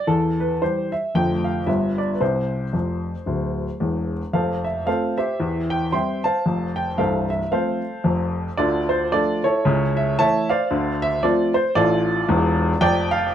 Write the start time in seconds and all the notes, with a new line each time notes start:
0.07 E2 E3 A4
0.40 B4
0.62 E3 G3 G4 C5
0.92 E5
1.14 F1 F2 D3 A3 F4 G5
1.44 F5
1.66 G1 G2 G3 B3 F4 E5
1.98 D5
2.15 B4
2.20 C2 C3 C5
2.73 F1 F2
3.26 D1 D2
3.80 E1 E2
4.33 F1 F2 A4 C5 F5
4.64 E5
4.86 A3 C4 F4 A4 C5 F5
5.18 G4 C5 E5
5.40 E2 E3
5.70 G5
5.92 G3 C4 E5 G5 C6
6.24 C5 F5 A5
6.46 F1 F2
6.76 G5
6.98 C1 C2 A4 C5 F5
7.30 E5
7.51 F3 A3 C4 A4 C5 F5
8.04 F1 F2
8.57 D2 D3 F4 A4 D5
8.89 C5
9.12 F3 A3 D4 F4 A4 D5
9.44 E4 A4 C#5
9.65 C#2 C#3
9.97 E5
10.19 E3 A3 E4 C#5 E5 A5
10.49 C5 D5 F5
10.71 D2 D3
11.02 E5
11.23 F3 A3 C4 F4 A4 D5
11.54 C5
11.75 A1 A2 F4 A4 D5
12.29 E1 E2
12.81 F1 F2 D5 G5
13.11 F5